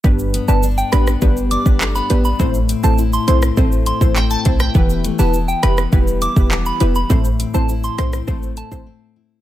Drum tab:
HH |--x---x---x---x-|--x---x---x---x-|--x---x---x---x-|--x---x---x-----|
SH |xxxxxxxxxxxxxxxx|xxxxxxxxxxxxxxxx|xxxxxxxxxxxxxxxx|xxxxxxxxxxxx----|
CP |------------x---|------------x---|------------x---|----------------|
SD |------rr--------|-------r-------r|------rr--------|------rr--------|
BD |o-------o--o----|o-------o--o--o-|o-------o--o----|o-------o--o----|